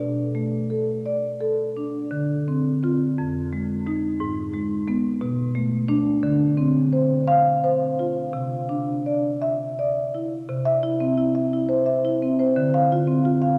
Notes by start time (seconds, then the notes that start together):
Already playing: D4
0.00 B2
0.35 A3
0.70 A4
1.06 D5
1.41 A4
1.77 D4
2.11 D3
2.48 C4
2.83 C4 F4
3.18 F2
3.53 G#3
3.86 G#3 D#4
4.20 G#2
4.54 G#3
4.88 G#3 B3
5.21 B2
5.55 A3
5.88 A3 D4
6.23 D3
6.57 C4
6.93 C5
7.28 F5
7.64 C5
7.99 F4
8.33 C3
8.69 D4
9.06 D5
9.42 E5
9.79 D5
10.15 E4
10.49 C3
10.65 E5
10.83 E4
11.00 C4
11.18 E4
11.35 E5
11.53 E4
11.69 C5
11.86 E5
12.05 E4
12.22 C4
12.39 C5
12.56 D3
12.74 F5
12.92 F4
13.07 C4
13.25 F4
13.42 F5